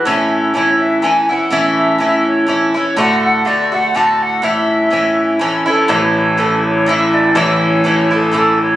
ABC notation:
X:1
M:3/4
L:1/8
Q:"Swing" 1/4=123
K:A
V:1 name="Flute"
e z c e g f | e e e c c c | f f d f a f | e4- e A |
c c A c e d | c c c A A c |]
V:2 name="Bouzouki"
[A,,E,CE]2 [A,,E,CE]2 [A,,E,CE] [E,CE] | [A,,E,CE]2 [A,,E,CE]2 [A,,E,CE] [E,CE] | [A,,D,A,F]2 [A,,D,A,F] [D,A,F] [A,,D,A,F]2 | [A,,E,CE]2 [A,,E,CE]2 [A,,E,CE] [E,CE] |
[A,,E,CE]2 [A,,E,CE]2 [A,,E,CE]2 | [A,,E,CE]2 [A,,E,CE] [E,CE] [A,,E,CE]2 |]
V:3 name="Grand piano" clef=bass
z6 | z6 | z6 | z6 |
A,,,6 | A,,,6 |]